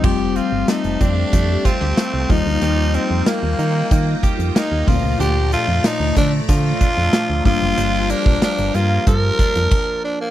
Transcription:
<<
  \new Staff \with { instrumentName = "String machine" } { \time 4/4 \key f \mixolydian \tempo 4 = 93 <g' f'' a''>2.~ <g' f'' a''>8 <f' ees'' g''>8~ | <f' ees'' g''>2.~ <f' ees'' g''>8 <a d'' bes''>8~ | <a d'' bes''>2.~ <a d'' bes''>8 <g' f'' bes''>8~ | <g' f'' bes''>2. r4 | }
  \new Staff \with { instrumentName = "Tenor saxophone" } { \time 4/4 \key f \mixolydian g'8 f'8 ees'8 d'4 c'4 ees'8~ | ees'8 c'8 bes4. r8 ees'8 f'8 | g'8 f'8 ees'8 d'8 f'4. f'8~ | f'8 d'8 d'8 f'8 bes'4. d'16 bes16 | }
  \new Staff \with { instrumentName = "Tine electric piano" } { \time 4/4 \key f \mixolydian <g a c' f'>2.~ <g a c' f'>8 <g bes ees' f'>8~ | <g bes ees' f'>2.~ <g bes ees' f'>8 <bes, a c' f' d''>8~ | <bes, a c' f' d''>2.~ <bes, a c' f' d''>8 <g bes d' f'>8~ | <g bes d' f'>2. r4 | }
  \new Staff \with { instrumentName = "Clean electric guitar" } { \time 4/4 \key f \mixolydian <f g'>8 c'8 a8 c'8 a8 f'16 g'16 a8 f8 | <f g'>8 ees'8 bes8 ees'8 bes8 g'8 bes8 f8 | <f d'>8 a8 f8 a8 f8 d'8 f8 f8 | <f d'>8 bes8 f8 bes8 f8 d'8 r4 | }
  \new Staff \with { instrumentName = "FM bass" } { \clef bass \time 4/4 \key f \mixolydian f,,8. g,,16 r16 f,,16 f,8 f,8 r16 d,16 r16 c,16 ees,16 d,16 | ees,8. f,16 r16 ees,16 ees8 ees8 r16 f,16 r16 ees,16 d,16 des,16 | d,8. f,16 r16 d,16 d8 d8 r16 f,16 r16 d,16 g,,16 ges,,16 | g,,8. bes,,16 r16 g,,16 g,8 g,8 r16 f,16 r4 | }
  \new DrumStaff \with { instrumentName = "Drums" } \drummode { \time 4/4 <cymc bd>8 hh8 <hh sn>16 hh16 <hh bd>8 <hh bd>8 <hh bd>8 <hh sn>8 <hho bd>8 | hh8 hh8 <hh sn>8 hh8 <hh bd>8 <hh bd>16 hh16 <hh sn>8 <hho bd>8 | hh8 hh8 <hh sn>8 <hh bd>8 <hh bd>8 <hh bd>8 <hh sn>8 <hho bd>8 | hh8 hh16 bd16 <hh sn>16 hh16 hh8 <hh bd>8 <hh bd>16 hh16 <cymc bd>4 | }
>>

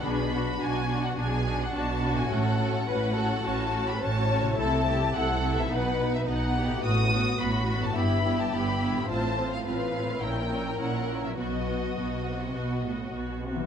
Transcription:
<<
  \new Staff \with { instrumentName = "Violin section" } { \time 4/4 \key fis \minor \tempo 4 = 106 b''4 gis''8. fis''16 gis''8. fis''16 a''8. gis''16 | fis''8. fis''4~ fis''16 a''8. b''16 a''4 | \key b \phrygian a''4 fis''8. e''16 fis''8. e''16 fis''4 | dis'''4 b''8. a''16 b''8. a''16 b''4 |
a''8. f''16 f''4 g''4 fis''8. e''16 | dis''2. r4 | }
  \new Staff \with { instrumentName = "Violin section" } { \time 4/4 \key fis \minor gis'8 fis'4. gis'4 fis'4 | a'4 b'8 a'8 fis'4 cis''4 | \key b \phrygian a'8 g'8 a'4 b'4 dis'8 g'8 | fis'4 fis'4 g'2 |
c''4 b'4 ais'2 | fis'2.~ fis'8 r8 | }
  \new Staff \with { instrumentName = "Harp" } { \time 4/4 \key fis \minor <b, d' fis' b'>1 | <a, cis' fis' cis''>1 | \key b \phrygian <c a e' e''>2 <b, b dis' b'>2 | <a, b fis' b'>2 <g, b g' e''>2 |
<a, c' f' f''>2 <ais, ais e' cis''>2 | <b, fis fis' b'>1 | }
  \new Staff \with { instrumentName = "Viola section" } { \time 4/4 \key fis \minor <d' fis'>8 <d' fis'>8 <d' fis'>8 <d' fis'>8 <d' fis'>8 <d' fis'>8 <d' fis'>8 <d' fis'>8 | <cis' fis'>8 <cis' fis'>8 <cis' fis'>8 <cis' fis'>8 <cis' fis'>8 <cis' fis'>8 <cis' fis'>8 <cis' fis'>8 | \key b \phrygian <a e'>8 <a e'>8 <a e'>8 <a e'>8 <b dis'>8 <b dis'>8 <b dis'>8 <b dis'>8 | <b fis'>8 <b fis'>8 <b fis'>8 <b fis'>8 <b e'>8 <b e'>8 <b e'>8 <b e'>8 |
<c' f'>8 <c' f'>8 <c' f'>8 <c' f'>8 <cis' e'>8 <cis' e'>8 <cis' e'>8 <cis' e'>8 | <b fis'>8 <b fis'>8 <b fis'>8 <b fis'>8 <b fis'>8 <b fis'>8 <b fis'>8 <b fis'>8 | }
  \new Staff \with { instrumentName = "Cello section" } { \clef bass \time 4/4 \key fis \minor b,4 b,4 b,4 b,4 | a,4 a,4 a,4 a,4 | \key b \phrygian c4 c4 b,4 b,4 | a,4 a,4 g,4 g,4 |
a,4 a,4 ais,4 ais,4 | b,4 b,8 c8 b,8 a,8 b,8 c8 | }
  \new Staff \with { instrumentName = "Double bass section" } { \clef bass \time 4/4 \key fis \minor b,,4 b,,4 b,,4 b,,4 | a,,4 a,,4 a,,4 a,,4 | \key b \phrygian c,4 c,4 b,,4 b,,4 | a,,4 a,,4 g,,4 g,,4 |
a,,4 a,,4 ais,,4 ais,,4 | b,,4 b,,4 b,,4 b,,4 | }
>>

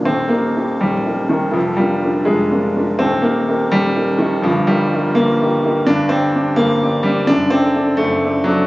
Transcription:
<<
  \new Staff \with { instrumentName = "Grand piano" } { \time 6/8 \key ees \major \tempo 4. = 83 <ees,, ees,>8 <ees' g' bes'>8 <ees' g' bes'>8 <ees,, ees,>8 <ees' g' bes'>8 <ees' g' bes'>8 | <f,, f,>8 <d' f' bes'>8 <d' f' bes'>8 <f,, f,>8 <d' f' bes'>8 <d' f' bes'>8 | <ees,, ees,>8 <ees' g' bes'>8 <ees' g' bes'>8 <ees,, ees,>8 <ees' g' bes'>8 <ees' g' bes'>8 | <g,, g,>8 <ees' g' bes'>8 <ees' g' bes'>8 <g,, g,>8 <ees' g' bes'>8 <ees' g' bes'>8 |
\key g \minor <g,, g,>8 <d' g' d''>8 <d' g' d''>8 <g,, g,>8 <d' g' d''>8 <d' g' d''>8 | <fis,, fis,>8 <d' a' d''>8 <d' a' d''>8 <fis,, fis,>8 <d' a' d''>8 <d' a' d''>8 | }
  \new Staff \with { instrumentName = "Grand piano" } { \clef bass \time 6/8 \key ees \major c'8 bes4 g4 ees8 | f8 g4 aes4. | c'8 bes4 g4 ees8 | f8 g4 bes4. |
\key g \minor d'8 c'4 bes4 g8 | d'8 c'4 a4 fis8 | }
>>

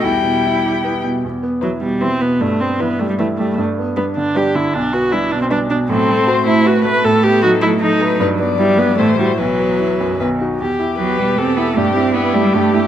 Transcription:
<<
  \new Staff \with { instrumentName = "Violin" } { \time 3/4 \key e \minor \tempo 4 = 154 g''2~ g''8 r8 | r4 b'4 b'4 | r4 b'4 b'4 | r4 b'4 b'4 |
r4 b'4 b'4 | a'4 c''4 b'4 | a'2 a'8 b'8 | b'8 d''4. c''4 |
b'2 b'8 r8 | g'2. | g'4 g'2 | }
  \new Staff \with { instrumentName = "Viola" } { \time 3/4 \key e \minor g2~ g8 r8 | r4 fis8 g8 c'8 b8 | a8 c'8 b8 a16 g16 a8 a8 | r4 b8 d'8 g'8 e'8 |
d'8 fis'8 e'8 d'16 c'16 d'8 d'8 | c'4. e'8 fis'8 b'8 | a'8 g'8 fis'8 e'8 dis'4 | r4 g8 b8 a8 g8 |
fis2 r4 | g'4 b'4 a'4 | g'4 e'4 g'4 | }
  \new Staff \with { instrumentName = "Grand piano" } { \time 3/4 \key e \minor e,8 b,8 e'8 g'8 b8 b,8 | e,8 b8 e'8 b,8 e'8 b,8 | g,8 b8 e'8 g8 e'8 g8 | g,8 b8 d'8 d8 d'8 d8 |
b,,8 b8 d'8 b,8 d'8 b,8 | a,8 c'8 fis'8 a8 fis'8 a8 | a,8 b8 dis'8 a8 dis'8 a8 | g,8 b8 e'8 g8 a,8 <e' fis'>8 |
b,,8 b8 e'8 fis,8 b,,8 <dis' fis'>8 | e,8 e'8 b8 b,8 e,8 e'8 | g,8 e'8 b8 g8 g,8 e'8 | }
  \new Staff \with { instrumentName = "Cello" } { \clef bass \time 3/4 \key e \minor e'2~ e'8 r8 | r4 e4 e4 | r4 e4 e4 | r4 g4 g4 |
r4 g4 g4 | fis8 g8 a2~ | a4 fis4 fis4~ | fis2 e4 |
e2 dis8 r8 | r4 fis8 g8 c'8 b8 | a8 c'8 b8 a16 g16 a8 a8 | }
>>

